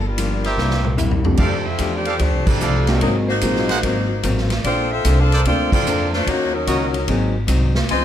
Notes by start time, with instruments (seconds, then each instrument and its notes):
Already playing: upright bass G1
0.07 saxophone section G3 D4 F4 A#4
0.17 hollow-body jazz guitar G2 F3 A#3 D4, hi-hat pedal, ride
0.44 trumpet section G4 A#4 C5 E5, ride
0.56 upright bass C2, hollow-body jazz guitar C3 G3 A#3 E4, snare
0.71 snare
0.84 mid tom
0.97 hollow-body jazz guitar C3 G3 A#3 E4, floor tom, hi-hat pedal
1.11 floor tom
1.25 grand piano F2 A3 C4 D4 G4, floor tom
1.37 upright bass F2, hollow-body jazz guitar F3 A3 D4 G4, saxophone section C4 D5, trumpet section G4 A4 D5 F5, kick, crash
1.42 saxophone section G4 A4
1.67 saxophone section C4 F4 A4 E5
1.79 upright bass E2, hollow-body jazz guitar F3 A3 D4 G4, kick, hi-hat pedal, ride
1.95 saxophone section C4 G4 A4 D5
2.05 trumpet section G4 A4 D5 F5, ride
2.18 upright bass D2, hollow-body jazz guitar F3 A3 D4 G4, saxophone section D4 G4, kick, ride
2.22 saxophone section A3 C5
2.33 upright bass C2
2.47 upright bass A1, saxophone section G3 C4 D4 A4, kick, crash
2.60 upright bass C2, hollow-body jazz guitar F3 A3 D4 G4, trumpet section G4 A4 D5 F5, hi-hat pedal
2.87 saxophone section D3 A3 C4 G4, grand piano G#3 A#3 C4 D#4 F#4, snare, ride
3.01 upright bass G#1, hollow-body jazz guitar G#2 F#3 A#3 C4, saxophone section F#3 C4 D#4 A#4, grand piano G#3 A#3 C4 D#4 F#4, kick, ride
3.29 saxophone section A#3 D#4 F#4 C5
3.41 upright bass A#1, hollow-body jazz guitar G#2 F#3 A#3 C4, grand piano G#3 A#3 C4 D#4 F4, kick, hi-hat pedal, ride
3.56 snare
3.69 trumpet section G#4 A#4 C5 F#5, snare, ride
3.83 upright bass G#1, hollow-body jazz guitar G#2 F#3 A#3 C4, kick, ride
4.23 upright bass A1, hollow-body jazz guitar G#2 F#3 A#3 C4, kick, hi-hat pedal, ride
4.38 snare
4.50 snare, ride
4.64 upright bass A#1, hollow-body jazz guitar A#3 D4 A4 C5, saxophone section C4 F4 A4 D5, kick, ride
4.92 saxophone section C4 F4 A4 E5
5.05 upright bass C2, hollow-body jazz guitar A#3 D4 A4 C5, kick, hi-hat pedal, ride
5.19 saxophone section D4 A4 C5 F5
5.31 trumpet section A4 A#4 C5 D5, ride
5.45 upright bass D2, grand piano A3 A#3 C4 D4 F4, hollow-body jazz guitar A#3 D4 A4 C5, saxophone section C4 F4 A4 D5, kick, ride
5.72 saxophone section C4 F4 A4 D5, kick, crash
5.84 upright bass F2, hollow-body jazz guitar A#3 D4 A4, hi-hat pedal
5.88 hollow-body jazz guitar C5
6.13 saxophone section A3 D4 F4 C5, snare
6.26 upright bass D#2, hollow-body jazz guitar D#3 A#3 C#4 F#4, saxophone section A#3 D#4 C#5, kick, ride
6.30 saxophone section F#4
6.54 saxophone section F#3 C#4 D#4 A#4
6.67 upright bass C#2, hollow-body jazz guitar D#3 A#3 C#4 F#4, trumpet section F#4 A#4 C#5 D#5, kick, hi-hat pedal, ride
6.94 ride
7.08 upright bass G#1, hollow-body jazz guitar G#2 F#3 C4 D#4, grand piano F#3 A#3 C4 D#4 G#4, kick, ride
7.47 upright bass C2, hollow-body jazz guitar G#2 F#3 C4 D#4, kick, hi-hat pedal, ride
7.75 snare
7.89 upright bass C#2, hollow-body jazz guitar C#3 F3 C4 D#4, saxophone section F4 C5 D#5 G#5, kick, ride